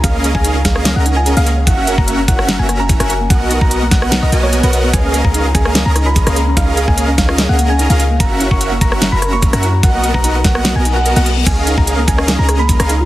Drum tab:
CC |----------------|----------------|----------------|----------------|
HH |x-x-x-x-x-x-xxx-|x-x-x-x-x-x-xxx-|x-x-x-x-x-x-xxx-|x-x-x-x-x-x-xxx-|
SD |------oro-------|-------ro-r--r--|------oro-------|-------ro-r--r--|
BD |o--o--o---------|o--o--o-----o---|o--o--o---------|o--o--o-----o---|

CC |----------------|----------------|----------------|x---------------|
HH |x-x-x-x-x-x-xxx-|x-x-x-x-x-x-xxx-|x-x-x-x-x-x-xxx-|x-x-x-x-x-x-xxx-|
SD |------oro-------|-------ro-r--r--|------oro-------|-------ro-r--r--|
BD |o--o--o---------|o--o--o-----o---|o--o--o---------|o--o--o-----o---|